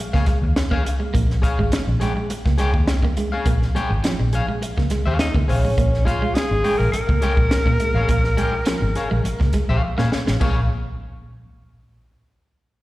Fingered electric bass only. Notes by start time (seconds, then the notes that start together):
0.14 C#2
0.42 D#2
1.15 A#1
1.59 G#1
1.72 muted fingered electric bass stroke
1.87 A#1
2.46 C#2
2.74 D#2
3.46 A#1
3.90 G#1
4.19 A#1
4.77 C#2
5.06 D#2
5.34 C#2
5.49 A#1
5.65 A1
5.78 A#1
6.51 G#1
6.80 A#1
6.93 muted fingered electric bass stroke
7.09 C#2
7.37 A#1
7.66 A#2
7.94 A1
8.09 A#1
8.82 G#1
9.12 A#1
9.25 muted fingered electric bass stroke
9.41 C#2
9.69 A#1
9.98 A#2
10.28 A1
10.41 A#1